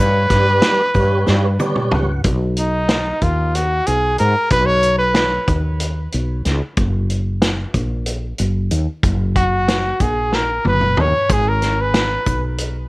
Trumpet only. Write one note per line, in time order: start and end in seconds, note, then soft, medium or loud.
0.00 1.60 B4 loud
2.59 3.24 D#4 medium
3.23 3.57 F4 medium
3.55 3.88 F#4 medium
3.87 4.19 G#4 medium
4.19 4.49 A#4 medium
4.52 4.68 B4 medium
4.66 4.98 C#5 loud
4.98 5.60 B4 medium
9.36 10.04 F#4 medium
10.02 10.36 G#4 medium
10.35 10.66 A#4 medium
10.68 11.02 B4 medium
11.01 11.34 C#5 medium
11.32 11.50 G#4 medium
11.48 11.83 A#4 medium
11.81 12.45 B4 medium